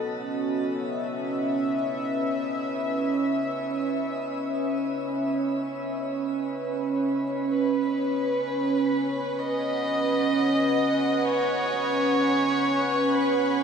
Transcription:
Already playing: analog synth pad B3 F#4 D#5
0.01 analog synth pad C#4
0.44 analog synth pad E5
1.10 analog synth pad B4
7.53 electric violin B4
8.07 analog synth pad G#5
9.31 analog synth pad F#5
9.40 electric violin D#5
11.26 electric violin C#5
13.15 electric violin B4

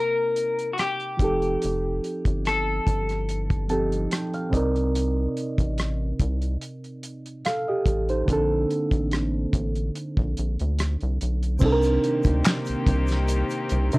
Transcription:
Already playing: reed electric piano C3 A#3 C4 D#4 D5, clean electric guitar A#4
0.36 closed hi-hat
0.59 closed hi-hat
0.73 clean electric guitar F#4
0.78 clean electric guitar G4, cross-stick, closed hi-hat
1.00 closed hi-hat
1.17 analog synth bass F1, reed electric piano F3 C4 D#4, kick, closed hi-hat
1.22 reed electric piano G4 A4
1.42 closed hi-hat
1.62 analog synth bass F1, closed hi-hat
2.04 closed hi-hat
2.25 analog synth bass G1, kick, closed hi-hat
2.45 clean electric guitar A4, cross-stick, closed hi-hat
2.87 analog synth bass G1, kick, closed hi-hat
3.09 cross-stick, closed hi-hat
3.29 closed hi-hat
3.50 kick, closed hi-hat
3.68 reed electric piano F3 C4 D#4 G4 A4 A5, closed hi-hat
3.92 closed hi-hat
4.11 reed electric piano G5, cross-stick, closed hi-hat
4.34 reed electric piano F5, closed hi-hat
4.50 reed electric piano C3 C4 D5 D#5, kick, closed hi-hat
4.54 analog synth bass C2, reed electric piano D#4 A#4
4.76 closed hi-hat
4.95 closed hi-hat
5.37 closed hi-hat
5.58 analog synth bass A1, kick, closed hi-hat
5.78 cross-stick, closed hi-hat
6.19 analog synth bass C2, kick, closed hi-hat
6.42 closed hi-hat
6.62 closed hi-hat
6.84 closed hi-hat
7.03 closed hi-hat
7.26 closed hi-hat
7.45 reed electric piano A4 F5, cross-stick, closed hi-hat
7.68 reed electric piano G4 D#5
7.86 analog synth bass A1, kick, closed hi-hat
8.09 reed electric piano D#4 C5, closed hi-hat
8.25 analog synth bass A#1, reed electric piano D3 A#3 C4, kick, closed hi-hat
8.31 reed electric piano D4 A4
8.70 closed hi-hat
8.91 analog synth bass A1, kick, closed hi-hat
9.12 cross-stick, closed hi-hat
9.53 analog synth bass A1, kick, closed hi-hat
9.75 closed hi-hat
9.95 closed hi-hat
10.17 analog synth bass A#1, kick
10.37 analog synth bass A#1, closed hi-hat
10.60 analog synth bass D2, closed hi-hat
10.79 cross-stick, closed hi-hat
11.01 analog synth bass C2, closed hi-hat
11.21 analog synth bass B1, closed hi-hat
11.43 closed hi-hat
11.59 analog synth bass C2, reed electric piano C3 C4 D4, string section D#3 A#3 C4 G4, kick, crash, shaker
11.64 reed electric piano D#4 A4
11.72 reed electric piano A#4
11.82 closed hi-hat, shaker
12.04 closed hi-hat
12.23 analog synth bass D2, kick, closed hi-hat, shaker
12.44 finger snap, snare, clap, closed hi-hat, shaker
12.65 closed hi-hat, shaker
12.69 analog synth bass C2
12.86 analog synth bass C2, kick, closed hi-hat
13.07 snare, closed hi-hat, shaker
13.28 closed hi-hat, shaker
13.50 closed hi-hat, shaker
13.69 analog synth bass C2, closed hi-hat, shaker
13.92 analog synth bass C3, reed electric piano D4 A#4, closed hi-hat, shaker

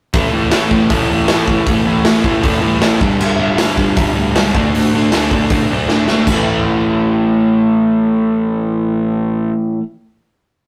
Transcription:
0.13 picked electric bass A1, overdriven electric guitar A2 E3 A3, kick, open hi-hat
0.33 picked electric bass A1, overdriven electric guitar A2 E3 A3
0.50 picked electric bass A1, overdriven electric guitar A2 E3 A3, snare, open hi-hat
0.71 picked electric bass A1, overdriven electric guitar A2 E3 A3, kick
0.90 picked electric bass A1, overdriven electric guitar A2 E3 A3, kick, open hi-hat
1.10 picked electric bass E2, overdriven electric guitar A2 E3 A3
1.28 picked electric bass A1, overdriven electric guitar A2 E3 A3, snare, open hi-hat
1.47 picked electric bass A2, overdriven electric guitar A2 E3 A3, kick
1.66 picked electric bass A1, overdriven electric guitar A2 E3 A3, kick, open hi-hat
1.86 picked electric bass A1, overdriven electric guitar A2 E3 A3
2.04 picked electric bass A1, overdriven electric guitar A2 E3 A3, snare, open hi-hat
2.24 picked electric bass A1, overdriven electric guitar A2 E3 A3, kick
2.43 picked electric bass E2, overdriven electric guitar A2 E3 A3, kick, open hi-hat
2.61 picked electric bass G1, overdriven electric guitar A2 E3 A3
2.81 picked electric bass A1, overdriven electric guitar A2 E3 A3, snare, open hi-hat
3.00 picked electric bass G1, overdriven electric guitar G2 D3 G3, kick
3.20 picked electric bass G1, overdriven electric guitar G2 D3 G3, crash
3.39 picked electric bass G1, overdriven electric guitar G2 D3 G3
3.57 picked electric bass G1, overdriven electric guitar G2 D3 G3, snare, open hi-hat
3.77 picked electric bass G1, overdriven electric guitar G2 D3 G3, kick
3.96 picked electric bass G1, overdriven electric guitar G2 D3 G3, kick, open hi-hat
4.14 picked electric bass D2, overdriven electric guitar G2 D3 G3
4.35 picked electric bass C#2, overdriven electric guitar G2 D3 G3, snare, open hi-hat
4.54 picked electric bass D2, overdriven electric guitar D3 A3 D4, kick
4.74 picked electric bass D2, overdriven electric guitar D3 A3 D4, open hi-hat
4.94 picked electric bass D2, overdriven electric guitar D3 A3 D4
5.12 picked electric bass D2, overdriven electric guitar D3 A3 D4, snare, open hi-hat
5.31 picked electric bass D2, overdriven electric guitar D3 A3 D4, kick
5.50 picked electric bass A2, overdriven electric guitar D3 A3 D4, kick, open hi-hat
5.70 picked electric bass B1, overdriven electric guitar D3 A3 D4
5.89 picked electric bass A2, overdriven electric guitar D3 A3 D4, snare
6.06 picked electric bass G#1, overdriven electric guitar D3 A3 D4, snare
6.27 picked electric bass A1, overdriven electric guitar A2 E3, kick, splash
6.32 overdriven electric guitar A3

